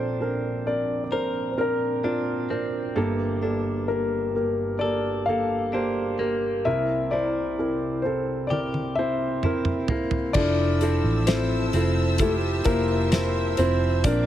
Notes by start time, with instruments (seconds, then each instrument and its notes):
Already playing: grand piano A#1 A#2 C4 D4 A4 A#4 C5, clean electric guitar A#2 D4
0.21 grand piano C4 D4 A#4
0.67 grand piano C4 D4 A#4 D5
1.04 grand piano D5
1.12 grand piano C4 D4 A#4 C5, clean electric guitar A#4
1.51 grand piano C5
1.58 grand piano C4 D4 A#4
2.04 grand piano C4 D4 F4, clean electric guitar D4
2.50 grand piano C4 D4 A#4, clean electric guitar C4
2.96 grand piano G1 G2 A#3 G4 A4, clean electric guitar G2
3.42 grand piano A#3 G4 A4, clean electric guitar D4
3.88 grand piano A#3 G4 A#4
4.36 grand piano A#3 G4 A#4
4.79 grand piano A#3 G4 A#4 D5, clean electric guitar A4
5.26 grand piano A#3 G4 A4 F5
5.73 grand piano A#3 G4 C5, clean electric guitar D4
6.19 clean electric guitar A#3, grand piano A#3 G4 A#4
6.65 grand piano C2 C3 C4 E4 A#4 E5, clean electric guitar C3
7.11 grand piano C4 E4 C5 D5, clean electric guitar E4
7.59 grand piano C4 E4 A#4
8.02 grand piano C4 E4 A4 C5
8.47 clean electric guitar G4, grand piano D5, high tom
8.52 grand piano C4 E4 A#4
8.74 high tom
8.95 grand piano C4 E4 C5 E5
9.43 grand piano C4 E4 A#4, clean electric guitar E4, mid tom
9.65 mid tom
9.88 clean electric guitar A#3, grand piano C4 E4 A#4, floor tom
10.11 floor tom
10.33 fingered electric bass F1, clean electric guitar F3, grand piano D4 E4 F4 A4 D5, string section C5 E5 E6, kick, crash
10.37 string section A5
10.81 clean electric guitar C4 E4, grand piano E4 F4 A4, closed hi-hat
11.04 fingered electric bass A1
11.27 grand piano C4 E4 F4 A4 C5, clean electric guitar E4, snare, closed hi-hat
11.73 fingered electric bass F1, clean electric guitar C4, grand piano E4 F4 A4, closed hi-hat
12.18 grand piano A3 E4 F4 G4 A4, kick, closed hi-hat
12.64 fingered electric bass F1, grand piano A#3 E4 F4 A#4 C5, clean electric guitar E4, kick, closed hi-hat
13.12 clean electric guitar C4 E4, grand piano E4 F4 C5, snare, closed hi-hat
13.57 fingered electric bass F1, clean electric guitar C4, grand piano C4 E4 F4 C5, closed hi-hat
14.04 fingered electric bass A#1, clean electric guitar A#2, grand piano A#2 C4 D4 A#4 D5, string section C5 A#5 D6, kick, closed hi-hat